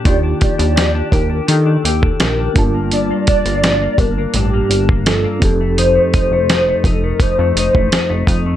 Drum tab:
HH |x-xxx-x-x-x-x-x-|x-xxx-x-x-x-x-x-|x-x-x-x-x-x-x-x-|
SD |----o-------o---|----o-------o---|----o-------o---|
BD |o-o---o----o--o-|--o---o----o--o-|--o---o-o--o--o-|